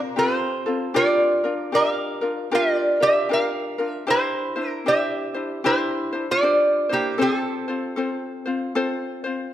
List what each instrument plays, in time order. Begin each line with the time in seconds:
Already playing: ukulele C4 F4
0.16 ukulele C4 F4 G4 A4, resonator guitar played with a steel bar F4 C5
0.66 ukulele C4 F4 A4
0.94 ukulele D4 F4 G4 A#4, resonator guitar played with a steel bar F4 D5
1.44 ukulele D4 F4 A#4
1.72 ukulele D4 F4 G4 A#4, resonator guitar played with a steel bar A#4 F5
2.21 ukulele D4 F4 A#4
2.51 ukulele D4 F4 G4 A#4, resonator guitar played with a steel bar F4 D5
3.00 ukulele D4 F4 A#4, resonator guitar played with a steel bar G4 E5
3.29 ukulele D4 F4 G4 A#4
3.33 resonator guitar played with a steel bar A#4 F5
3.78 ukulele D4 F4 A#4
3.88 resonator guitar played with a steel bar E5
4.07 ukulele D4 E4 G4 C5, resonator guitar played with a steel bar E4 C5
4.56 ukulele D4 E4 C5
4.68 resonator guitar played with a steel bar A#4
4.86 ukulele D4 E4 G4 C5, resonator guitar played with a steel bar G4 E5
5.34 ukulele D4 E4 C5
5.64 ukulele D4 E4 G4 C5, resonator guitar played with a steel bar E4 C5
6.13 ukulele D4 E4 C5
6.31 resonator guitar played with a steel bar F4 D5
6.42 ukulele D4 G4 C5
6.89 resonator guitar played with a steel bar A#3, ukulele D4 E4 C5
6.94 resonator guitar played with a steel bar G4
7.18 ukulele C4 F4 A4 C5, resonator guitar played with a steel bar C4
7.22 resonator guitar played with a steel bar A4
7.68 ukulele C4 F4 C5
7.96 ukulele C4 F4 A4 C5
8.46 ukulele C4 F4 C5
8.75 ukulele C4 F4 A4 C5
9.24 ukulele C4 F4 C5